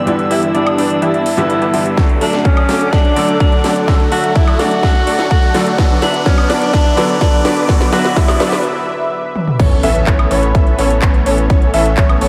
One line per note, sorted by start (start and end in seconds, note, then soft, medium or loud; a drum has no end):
0.00 0.06 G2 medium
0.00 0.06 D3 medium
0.00 0.07 G3 medium
0.00 0.07 B3 medium
0.00 0.08 E4 medium
0.00 2.00 G4 medium
0.00 1.94 B4 medium
0.00 1.94 E6 medium
0.00 riser medium
0.06 0.28 G1 loud
0.06 1.23 G2 medium
0.06 1.23 D3 medium
0.06 0.28 E3 medium
0.06 1.23 G3 medium
0.06 0.28 B3 medium
0.06 1.23 B3 medium
0.06 0.28 D4 medium
0.06 1.24 E4 medium
0.06 0.28 G4 medium
0.06 0.28 D5 loud
0.06 1.96 A5 medium
0.06 closed hi-hat soft
0.19 closed hi-hat soft
0.31 0.52 G1 medium
0.31 0.52 E3 medium
0.31 0.52 B3 medium
0.31 0.52 D4 medium
0.31 0.56 E4 loud
0.31 0.52 G4 medium
0.31 0.52 E5 loud
0.31 open hi-hat loud
0.43 closed hi-hat soft
0.54 0.76 G1 loud
0.54 0.76 E3 medium
0.54 0.76 B3 medium
0.54 0.76 D4 medium
0.54 1.04 D4 loud
0.54 0.76 G4 medium
0.54 0.76 D5 loud
0.54 closed hi-hat soft
0.67 closed hi-hat soft
0.67 high woodblock medium
0.78 1.00 G1 medium
0.78 0.99 E3 medium
0.78 0.99 B3 medium
0.78 0.99 D4 medium
0.78 0.99 G4 medium
0.78 0.99 D5 loud
0.78 open hi-hat loud
0.90 closed hi-hat soft
1.02 1.36 G1 medium
1.02 1.23 E3 medium
1.02 1.23 B3 medium
1.02 1.23 D4 medium
1.02 1.50 E4 loud
1.02 1.23 G4 medium
1.02 1.23 E5 medium
1.02 closed hi-hat soft
1.14 closed hi-hat soft
1.26 open hi-hat loud
1.37 1.59 G1 loud
1.37 1.71 G2 loud
1.37 1.71 D3 medium
1.37 1.59 E3 medium
1.37 1.71 G3 medium
1.37 1.59 B3 medium
1.37 1.71 B3 medium
1.37 1.59 D4 medium
1.37 1.71 E4 loud
1.37 1.59 G4 medium
1.37 1.59 B4 loud
1.37 closed hi-hat medium
1.50 1.94 E4 medium
1.50 closed hi-hat soft
1.62 1.71 G2 loud
1.62 1.71 E3 medium
1.62 1.71 B3 medium
1.62 1.71 D4 medium
1.62 1.71 G4 medium
1.62 1.71 B4 medium
1.62 closed hi-hat soft
1.73 1.95 G1 loud
1.73 1.94 D3 medium
1.73 1.95 E3 medium
1.73 1.94 G3 medium
1.73 1.95 B3 medium
1.73 1.95 D4 medium
1.73 1.95 E4 medium
1.73 1.95 G4 medium
1.73 1.95 E5 medium
1.73 open hi-hat loud
1.86 closed hi-hat medium
1.96 2.19 D2 loud
1.96 3.13 D3 medium
1.96 3.13 F#3 medium
1.96 2.18 F#3 medium
1.96 2.18 A3 medium
1.96 3.14 A3 medium
1.96 2.18 D4 medium
1.96 3.14 F#4 medium
1.96 2.18 A4 medium
1.96 5.75 A4 medium
1.96 2.18 D5 loud
1.96 7.65 F#5 medium
1.96 3.86 D6 medium
1.96 kick loud
1.96 snare soft
1.96 closed hi-hat soft
2.09 closed hi-hat soft
2.21 2.43 D2 loud
2.21 2.42 F#3 medium
2.21 2.42 A3 medium
2.21 2.46 D4 loud
2.21 2.42 D4 medium
2.21 2.42 A4 medium
2.21 2.42 E5 loud
2.21 open hi-hat loud
2.33 snare soft
2.45 2.67 D2 loud
2.45 2.66 F#3 loud
2.45 2.66 A3 medium
2.45 2.94 C#4 loud
2.45 2.66 D4 medium
2.45 2.66 A4 medium
2.45 2.66 D5 loud
2.45 kick loud
2.45 closed hi-hat soft
2.57 closed hi-hat soft
2.57 high woodblock medium
2.69 2.90 D2 medium
2.69 2.90 F#3 medium
2.69 2.90 A3 medium
2.69 2.90 D4 medium
2.69 2.90 A4 medium
2.69 2.90 D5 loud
2.69 snare medium
2.69 open hi-hat loud
2.81 closed hi-hat soft
2.93 3.14 D2 medium
2.93 3.14 F#3 medium
2.93 3.14 A3 medium
2.93 3.40 D4 loud
2.93 3.14 D4 medium
2.93 3.14 A4 medium
2.93 3.14 E5 loud
2.93 kick loud
2.93 snare soft
2.93 closed hi-hat soft
3.05 closed hi-hat soft
3.15 3.38 D2 loud
3.15 3.84 D3 medium
3.15 3.85 F#3 medium
3.15 3.35 F#3 medium
3.15 3.35 A3 medium
3.15 3.85 A3 medium
3.15 3.35 D4 medium
3.15 3.35 A4 medium
3.15 3.86 A4 medium
3.15 3.35 D5 loud
3.15 open hi-hat loud
3.28 closed hi-hat medium
3.40 3.62 D2 loud
3.40 3.61 F#3 medium
3.40 3.61 A3 medium
3.40 3.61 D4 medium
3.40 3.85 D4 medium
3.40 3.61 A4 medium
3.40 3.61 D5 medium
3.40 kick loud
3.40 closed hi-hat medium
3.52 closed hi-hat soft
3.64 3.86 D2 loud
3.64 3.85 F#3 medium
3.64 3.85 A3 medium
3.64 3.85 D4 medium
3.64 3.85 A4 medium
3.64 3.85 D5 medium
3.64 snare medium
3.64 open hi-hat loud
3.76 closed hi-hat medium
3.87 4.09 D2 medium
3.87 5.04 D3 medium
3.87 5.04 F#3 medium
3.87 4.09 F#3 medium
3.87 4.09 A3 medium
3.87 5.04 A3 medium
3.87 4.09 D4 medium
3.87 5.05 F#4 medium
3.87 4.09 A4 medium
3.87 4.09 D5 loud
3.87 5.76 C#6 medium
3.87 kick loud
3.87 snare medium
3.87 closed hi-hat soft
4.00 closed hi-hat soft
4.12 4.33 D2 loud
4.12 4.33 F#3 medium
4.12 4.33 A3 medium
4.12 4.33 D4 medium
4.12 4.37 F#4 loud
4.12 4.33 A4 medium
4.12 4.33 E5 loud
4.12 open hi-hat loud
4.24 closed hi-hat medium
4.35 4.57 D2 loud
4.35 4.57 F#3 medium
4.35 4.57 A3 medium
4.35 4.57 D4 medium
4.35 4.61 E4 loud
4.35 4.57 A4 medium
4.35 4.57 D5 loud
4.35 kick loud
4.35 closed hi-hat medium
4.47 closed hi-hat soft
4.47 high woodblock medium
4.59 4.81 D2 loud
4.59 4.80 F#3 medium
4.59 4.80 A3 medium
4.59 4.80 D4 medium
4.59 5.30 F#4 loud
4.59 4.80 A4 medium
4.59 4.80 D5 loud
4.59 snare medium
4.59 open hi-hat loud
4.71 closed hi-hat soft
4.83 5.05 D2 loud
4.83 5.04 F#3 medium
4.83 5.04 A3 medium
4.83 5.04 D4 medium
4.83 5.04 A4 medium
4.83 5.04 E5 loud
4.83 kick loud
4.83 snare medium
4.83 closed hi-hat soft
4.95 closed hi-hat soft
5.07 5.29 D2 loud
5.07 5.25 F#3 medium
5.07 5.25 A3 medium
5.07 5.26 D4 medium
5.07 5.25 A4 medium
5.07 5.25 D5 loud
5.07 open hi-hat loud
5.19 snare medium
5.31 5.52 D2 medium
5.31 5.52 F#3 medium
5.31 5.52 A3 medium
5.31 5.52 D4 medium
5.31 5.75 F#4 medium
5.31 5.52 A4 medium
5.31 5.52 D5 medium
5.31 kick loud
5.31 closed hi-hat medium
5.43 closed hi-hat soft
5.54 5.76 D2 loud
5.54 5.69 D3 medium
5.54 5.69 F#3 medium
5.54 5.76 F#3 medium
5.54 5.76 A3 medium
5.54 5.69 A3 medium
5.54 5.76 D4 medium
5.54 5.69 F#4 medium
5.54 5.76 A4 medium
5.54 5.76 D5 loud
5.54 snare medium
5.54 open hi-hat loud
5.66 closed hi-hat medium
5.77 6.00 B1 loud
5.77 6.94 D3 medium
5.77 6.94 F#3 medium
5.77 5.99 F#3 medium
5.77 5.99 B3 medium
5.77 6.95 B3 medium
5.77 5.99 D4 medium
5.77 6.95 F#4 medium
5.77 9.55 B4 medium
5.77 5.99 B4 medium
5.77 5.99 D5 loud
5.77 9.55 D6 medium
5.77 kick loud
5.77 snare medium
5.77 closed hi-hat medium
5.90 closed hi-hat soft
6.02 6.24 B1 loud
6.02 6.23 F#3 medium
6.02 6.23 B3 medium
6.02 6.28 D4 loud
6.02 6.23 D4 medium
6.02 6.23 B4 medium
6.02 6.23 E5 loud
6.02 snare medium
6.02 open hi-hat loud
6.14 closed hi-hat medium
6.26 6.47 F#3 loud
6.26 6.47 B3 medium
6.26 6.51 C#4 loud
6.26 6.47 D4 medium
6.26 6.47 B4 medium
6.26 6.47 D5 loud
6.26 kick loud
6.26 snare medium
6.26 closed hi-hat medium
6.38 closed hi-hat soft
6.38 high woodblock medium
6.50 6.71 B1 loud
6.50 6.71 F#3 loud
6.50 6.71 B3 medium
6.50 7.21 D4 loud
6.50 6.71 D4 medium
6.50 6.71 B4 medium
6.50 6.71 D5 loud
6.50 snare medium
6.50 open hi-hat loud
6.62 closed hi-hat medium
6.73 6.95 B1 loud
6.73 6.95 F#3 medium
6.73 6.95 B3 medium
6.73 6.95 D4 medium
6.73 6.95 B4 medium
6.73 6.95 E5 loud
6.73 kick loud
6.73 snare medium
6.73 closed hi-hat medium
6.85 closed hi-hat soft
6.96 7.19 B1 loud
6.96 7.65 D3 medium
6.96 7.66 F#3 medium
6.96 7.16 F#3 loud
6.96 7.16 B3 medium
6.96 7.66 B3 medium
6.96 7.16 D4 medium
6.96 7.67 A4 loud
6.96 7.16 B4 medium
6.96 7.16 D5 loud
6.96 snare medium
6.96 open hi-hat medium
7.09 closed hi-hat medium
7.21 7.42 F#3 medium
7.21 7.66 D4 loud
7.21 7.42 D4 medium
7.21 7.42 B4 medium
7.21 7.42 D5 medium
7.21 kick loud
7.21 snare medium
7.21 closed hi-hat medium
7.33 closed hi-hat soft
7.45 7.66 B1 loud
7.45 7.66 F#3 medium
7.45 7.66 B3 medium
7.45 7.66 D4 medium
7.45 7.66 B4 medium
7.45 7.66 D5 loud
7.45 snare medium
7.45 open hi-hat loud
7.57 closed hi-hat medium
7.68 7.90 B1 loud
7.68 8.64 D3 medium
7.68 8.64 F#3 medium
7.68 7.90 F#3 medium
7.68 7.90 B3 medium
7.68 8.64 B3 medium
7.68 7.90 D4 medium
7.68 8.65 F#4 medium
7.68 7.90 B4 medium
7.68 7.90 D5 loud
7.68 9.57 E5 medium
7.68 kick loud
7.68 snare medium
7.68 closed hi-hat medium
7.81 snare medium
7.81 closed hi-hat soft
7.93 8.14 B1 loud
7.93 8.14 F#3 medium
7.93 8.14 B3 medium
7.93 8.14 D4 medium
7.93 8.18 F#4 loud
7.93 8.14 B4 medium
7.93 8.14 E5 loud
7.93 snare medium
7.93 open hi-hat loud
8.05 snare medium
8.05 closed hi-hat medium
8.16 8.38 B1 loud
8.16 8.37 F#3 loud
8.16 8.37 B3 medium
8.16 8.37 D4 medium
8.16 8.64 E4 loud
8.16 8.37 B4 medium
8.16 8.37 D5 loud
8.16 kick loud
8.16 snare medium
8.16 closed hi-hat medium
8.28 snare medium
8.28 closed hi-hat soft
8.28 high woodblock medium
8.40 8.62 B1 loud
8.40 8.61 F#3 medium
8.40 8.61 B3 medium
8.40 8.61 D4 medium
8.40 8.61 B4 medium
8.40 8.61 D5 loud
8.40 snare loud
8.40 open hi-hat loud
8.52 snare medium
8.52 closed hi-hat medium
9.36 high tom medium
9.48 mid tom medium
9.59 9.81 A1 loud
9.59 9.80 E3 medium
9.59 12.28 A3 medium
9.59 9.80 B3 medium
9.59 9.80 C#4 medium
9.59 12.28 C#4 medium
9.59 9.80 A4 medium
9.59 11.48 B4 medium
9.59 9.80 C#5 loud
9.59 kick loud
9.59 closed hi-hat medium
9.59 crash loud
9.59 impact medium
9.71 closed hi-hat soft
9.83 10.05 A1 loud
9.83 10.04 E3 medium
9.83 10.04 B3 medium
9.83 10.04 C#4 medium
9.83 10.04 A4 medium
9.83 10.04 E5 loud
9.83 open hi-hat loud
9.95 closed hi-hat medium
10.07 10.28 A1 loud
10.07 10.28 E3 loud
10.07 10.28 B3 medium
10.07 10.28 C#4 medium
10.07 10.28 A4 medium
10.07 10.28 C#5 loud
10.07 kick loud
10.07 clap loud
10.07 closed hi-hat medium
10.19 closed hi-hat soft
10.19 high woodblock medium
10.31 10.52 A1 loud
10.31 10.52 E3 loud
10.31 10.52 B3 medium
10.31 10.52 C#4 medium
10.31 10.52 A4 medium
10.31 10.52 C#5 loud
10.31 open hi-hat loud
10.43 closed hi-hat medium
10.55 10.76 A1 medium
10.55 10.76 E3 medium
10.55 10.76 B3 medium
10.55 10.76 C#4 medium
10.55 10.76 A4 medium
10.55 10.76 E5 loud
10.55 10.76 E5 medium
10.55 kick loud
10.55 closed hi-hat soft
10.67 closed hi-hat soft
10.78 11.00 A1 loud
10.78 10.97 E3 loud
10.78 10.97 B3 medium
10.78 10.97 C#4 medium
10.78 10.97 A4 medium
10.78 10.97 C#5 loud
10.78 open hi-hat loud
10.90 closed hi-hat medium
11.02 11.24 A1 loud
11.02 11.23 E3 medium
11.02 11.23 B3 medium
11.02 11.23 C#4 medium
11.02 11.23 A4 medium
11.02 11.23 C#5 medium
11.02 kick loud
11.02 clap loud
11.02 closed hi-hat medium
11.14 closed hi-hat soft
11.26 11.48 A1 loud
11.26 11.47 E3 medium
11.26 11.47 B3 medium
11.26 11.47 C#4 medium
11.26 11.47 A4 medium
11.26 11.47 C#5 medium
11.26 open hi-hat loud
11.38 closed hi-hat medium
11.50 11.71 A1 loud
11.50 11.71 E3 medium
11.50 11.71 B3 medium
11.50 11.71 C#4 medium
11.50 11.71 A4 medium
11.50 12.28 A4 medium
11.50 11.71 C#5 loud
11.50 kick loud
11.50 closed hi-hat soft
11.62 closed hi-hat soft
11.74 11.95 A1 loud
11.74 11.95 E3 medium
11.74 11.95 B3 medium
11.74 11.95 C#4 medium
11.74 11.95 A4 medium
11.74 11.95 E5 loud
11.74 open hi-hat loud
11.86 closed hi-hat medium
11.97 12.19 A1 loud
11.97 12.18 E3 medium
11.97 12.18 B3 medium
11.97 12.18 C#4 medium
11.97 12.18 C#5 loud
11.97 kick loud
11.97 clap loud
11.97 closed hi-hat medium
12.09 closed hi-hat soft
12.09 high woodblock medium
12.21 12.28 A1 medium
12.21 12.28 E3 medium
12.21 12.28 B3 medium
12.21 12.28 C#4 medium
12.21 12.28 A4 medium
12.21 12.28 C#5 loud
12.21 open hi-hat loud